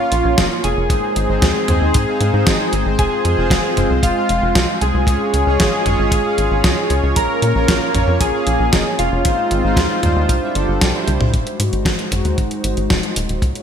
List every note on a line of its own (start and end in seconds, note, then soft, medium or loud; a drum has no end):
0.00 0.35 A#3 medium
0.00 0.88 A#3 medium
0.00 0.35 C#4 medium
0.00 0.86 C#4 medium
0.00 0.35 F4 medium
0.00 0.54 F4 loud
0.00 0.88 F4 medium
0.00 0.86 C#5 medium
0.00 0.35 F5 medium
0.00 0.54 F5 medium
0.12 0.23 A#1 medium
0.12 closed hi-hat medium
0.25 0.36 A#1 medium
0.38 0.49 F1 loud
0.38 0.49 A#3 medium
0.38 0.49 C#4 medium
0.38 0.49 F4 medium
0.38 0.49 D#5 loud
0.38 kick loud
0.38 snare loud
0.38 closed hi-hat medium
0.64 0.75 F1 loud
0.64 2.88 G#4 loud
0.64 2.88 G#5 loud
0.64 closed hi-hat medium
0.77 0.88 F1 medium
0.90 1.01 G#1 loud
0.90 1.26 G#3 medium
0.90 7.12 G#3 medium
0.90 1.26 C4 medium
0.90 5.04 C4 medium
0.90 1.26 D#4 medium
0.90 2.97 D#4 medium
0.90 1.26 C5 medium
0.90 5.04 C5 medium
0.90 kick loud
0.90 closed hi-hat medium
1.16 1.27 G#1 loud
1.16 closed hi-hat medium
1.29 1.41 G#1 medium
1.29 1.65 G#3 medium
1.29 1.65 C4 medium
1.29 1.65 D#4 medium
1.29 1.65 C5 loud
1.42 1.54 D#2 loud
1.42 kick loud
1.42 snare loud
1.42 closed hi-hat medium
1.68 1.80 D#2 loud
1.68 2.04 G#3 loud
1.68 2.04 C4 medium
1.68 2.04 D#4 medium
1.68 2.04 C5 loud
1.68 closed hi-hat medium
1.68 mid tom medium
1.81 1.93 D#2 medium
1.94 2.06 G#2 loud
1.94 kick loud
1.94 closed hi-hat medium
2.08 2.44 G#3 medium
2.08 2.44 C4 medium
2.08 2.44 D#4 medium
2.08 2.44 F5 medium
2.21 2.32 G#2 medium
2.21 closed hi-hat medium
2.34 2.45 G#2 medium
2.47 2.58 G#1 loud
2.47 2.58 G#3 medium
2.47 2.58 C4 medium
2.47 2.57 D#4 medium
2.47 2.58 D#5 loud
2.47 kick loud
2.47 snare loud
2.47 closed hi-hat medium
2.73 2.84 G#1 loud
2.73 closed hi-hat medium
2.86 2.97 G#1 medium
2.99 3.10 F1 loud
2.99 3.35 G#3 medium
2.99 3.35 C4 medium
2.99 3.35 F4 medium
2.99 9.21 F4 medium
2.99 3.93 G#4 loud
2.99 3.35 C5 medium
2.99 3.93 G#5 loud
2.99 kick loud
2.99 closed hi-hat medium
3.25 3.36 F2 loud
3.25 closed hi-hat medium
3.38 3.49 F1 medium
3.38 3.74 G#3 loud
3.38 3.74 C4 medium
3.38 3.74 F4 medium
3.38 3.74 C5 loud
3.50 3.62 F1 loud
3.50 kick loud
3.50 snare loud
3.50 closed hi-hat medium
3.77 3.88 F1 medium
3.77 4.13 G#3 loud
3.77 4.13 C4 medium
3.77 4.13 F4 medium
3.77 4.13 C5 loud
3.77 closed hi-hat medium
3.77 mid tom medium
3.90 4.01 C2 medium
4.03 4.14 F1 loud
4.03 4.71 F4 loud
4.03 4.71 F5 medium
4.03 kick loud
4.03 closed hi-hat medium
4.16 4.52 G#3 medium
4.16 4.52 C4 medium
4.16 4.52 F4 medium
4.16 4.52 F5 medium
4.29 4.41 F1 medium
4.29 closed hi-hat medium
4.42 4.54 F1 medium
4.55 4.67 C2 loud
4.55 4.66 G#3 medium
4.55 4.66 C4 medium
4.55 4.66 F4 medium
4.55 4.66 D#5 loud
4.55 kick loud
4.55 snare loud
4.55 closed hi-hat medium
4.81 4.93 C2 medium
4.81 7.06 G#4 loud
4.81 7.06 G#5 loud
4.81 closed hi-hat medium
4.94 5.06 C2 medium
5.07 5.19 C#2 loud
5.07 5.44 G#3 medium
5.07 5.44 C#4 medium
5.07 9.21 C#4 medium
5.07 5.44 F4 medium
5.07 5.44 C#5 medium
5.07 9.21 C#5 medium
5.07 kick loud
5.07 closed hi-hat medium
5.34 5.45 C#2 loud
5.34 closed hi-hat medium
5.47 5.58 C#2 medium
5.47 5.83 G#3 loud
5.47 5.83 C#4 medium
5.47 5.83 F4 medium
5.47 5.83 C#5 loud
5.60 5.71 G#1 loud
5.60 kick loud
5.60 snare loud
5.60 closed hi-hat medium
5.86 5.97 G#1 loud
5.86 6.22 G#3 loud
5.86 6.22 C#4 medium
5.86 6.22 F4 medium
5.86 6.22 C#5 loud
5.86 closed hi-hat medium
5.86 mid tom medium
5.99 6.10 G#1 medium
6.12 6.23 G#1 loud
6.12 kick loud
6.12 closed hi-hat medium
6.25 6.61 G#3 medium
6.25 6.61 C#4 medium
6.25 6.61 F4 medium
6.25 6.61 F5 medium
6.38 6.49 G#1 medium
6.38 closed hi-hat medium
6.51 6.62 G#1 medium
6.64 6.76 C#2 loud
6.64 6.75 G#3 loud
6.64 6.75 C#4 medium
6.64 6.75 F4 medium
6.64 6.75 D#5 loud
6.64 kick loud
6.64 snare loud
6.64 closed hi-hat medium
6.90 7.01 C#2 loud
6.90 closed hi-hat medium
7.03 7.14 C#2 medium
7.16 7.28 A#1 loud
7.16 7.52 A#3 medium
7.16 9.23 A#3 medium
7.16 7.52 C#4 medium
7.16 7.52 F4 medium
7.16 8.10 A#4 loud
7.16 7.52 C#5 medium
7.16 8.10 A#5 loud
7.16 kick loud
7.16 closed hi-hat medium
7.42 7.54 A#2 loud
7.42 closed hi-hat medium
7.55 7.67 A#1 medium
7.55 7.91 A#3 loud
7.55 7.91 C#4 medium
7.55 7.91 F4 medium
7.55 7.91 C#5 loud
7.68 7.80 A#1 loud
7.68 kick loud
7.68 snare loud
7.68 closed hi-hat medium
7.94 8.06 A#1 medium
7.94 8.30 A#3 loud
7.94 8.30 C#4 loud
7.94 8.30 F4 medium
7.94 8.30 C#5 loud
7.94 closed hi-hat medium
7.94 mid tom medium
8.07 8.19 F2 medium
8.20 8.32 A#1 loud
8.20 8.88 G#4 loud
8.20 8.88 G#5 loud
8.20 kick loud
8.20 closed hi-hat medium
8.34 8.70 A#3 medium
8.34 8.70 C#4 medium
8.34 8.70 F4 medium
8.34 8.70 F5 medium
8.47 8.58 A#1 medium
8.47 closed hi-hat medium
8.60 8.71 A#1 medium
8.73 8.84 F1 loud
8.73 8.84 A#3 medium
8.73 8.84 C#4 medium
8.73 8.84 F4 medium
8.73 8.84 D#5 loud
8.73 kick loud
8.73 snare loud
8.73 closed hi-hat medium
8.99 9.10 F1 loud
8.99 11.23 F4 loud
8.99 11.23 F5 loud
8.99 closed hi-hat medium
9.12 9.23 F1 medium
9.25 9.36 G#1 loud
9.25 9.61 G#3 medium
9.25 10.28 G#3 medium
9.25 9.61 C4 medium
9.25 10.28 C4 medium
9.25 9.61 D#4 medium
9.25 10.28 D#4 medium
9.25 9.61 C5 medium
9.25 11.32 C5 medium
9.25 kick loud
9.25 closed hi-hat medium
9.51 9.62 G#1 loud
9.51 closed hi-hat medium
9.64 9.75 G#1 medium
9.64 10.00 G#3 medium
9.64 10.00 C4 medium
9.64 10.00 D#4 medium
9.64 10.00 C5 loud
9.77 9.88 D#2 loud
9.77 kick loud
9.77 snare loud
9.77 closed hi-hat medium
10.03 10.14 D#2 loud
10.03 10.39 G3 loud
10.03 10.39 D4 medium
10.03 10.39 D#4 medium
10.03 10.39 C5 loud
10.03 closed hi-hat medium
10.03 mid tom medium
10.16 10.27 D#2 medium
10.29 10.40 C2 loud
10.29 11.33 G3 medium
10.29 11.33 D4 medium
10.29 kick loud
10.29 closed hi-hat loud
10.42 10.53 G3 medium
10.42 10.53 D4 medium
10.42 10.53 E4 medium
10.42 10.53 E5 medium
10.55 10.67 G1 medium
10.55 10.91 G3 medium
10.55 10.91 D4 medium
10.55 10.91 G4 medium
10.55 10.91 A4 loud
10.55 closed hi-hat medium
10.68 10.80 G1 medium
10.81 10.93 C2 loud
10.81 kick loud
10.81 snare loud
10.81 closed hi-hat medium
10.94 11.30 G3 medium
10.94 11.30 D4 medium
10.94 11.30 E4 medium
10.94 11.30 C5 loud
11.07 11.19 C2 medium
11.07 closed hi-hat medium
11.07 high tom medium
11.20 11.32 C2 medium
11.20 mid tom medium
11.34 11.45 G#1 loud
11.34 13.40 G#3 medium
11.34 13.40 D#4 medium
11.34 13.40 F#4 medium
11.34 13.40 C5 medium
11.34 kick loud
11.34 closed hi-hat medium
11.47 closed hi-hat soft
11.60 11.71 G#2 medium
11.60 closed hi-hat loud
11.73 11.84 G#1 medium
11.73 closed hi-hat soft
11.85 11.97 G#1 loud
11.85 kick loud
11.85 snare loud
11.85 closed hi-hat medium
11.99 closed hi-hat soft
12.12 12.23 G#1 medium
12.12 closed hi-hat medium
12.12 mid tom medium
12.25 12.36 D#2 medium
12.25 closed hi-hat soft
12.38 12.49 G#1 medium
12.38 kick loud
12.38 closed hi-hat medium
12.51 closed hi-hat soft
12.64 12.75 G#1 medium
12.64 closed hi-hat medium
12.77 12.88 G#1 medium
12.77 closed hi-hat soft
12.90 13.02 D#1 loud
12.90 kick loud
12.90 snare loud
12.90 closed hi-hat medium
13.03 closed hi-hat soft
13.16 13.28 D#1 medium
13.16 closed hi-hat medium
13.29 13.41 D#1 medium
13.29 closed hi-hat soft
13.42 13.54 C#2 loud
13.42 13.62 A#3 medium
13.42 13.62 F4 medium
13.42 13.62 G#4 medium
13.42 13.62 C#5 medium
13.42 kick loud
13.42 closed hi-hat medium
13.55 closed hi-hat soft